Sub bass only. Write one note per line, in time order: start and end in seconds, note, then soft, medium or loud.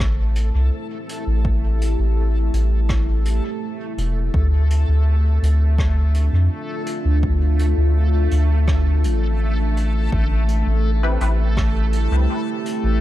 0.00 0.51 A1 loud
0.55 0.70 C2 loud
1.27 1.96 A1 medium
1.99 2.50 A1 medium
2.53 3.40 A1 medium
3.97 4.29 E1 loud
4.34 4.85 D2 medium
4.88 5.39 D2 medium
5.42 6.29 D2 medium
6.33 6.49 F2 loud
7.05 7.74 D2 medium
7.77 8.28 D2 medium
8.31 9.06 D2 medium
9.04 10.09 A1 medium
10.12 10.63 A1 loud
10.66 11.17 A1 medium
11.21 12.08 A1 medium
12.11 12.27 C2 loud
12.84 13.01 A1 medium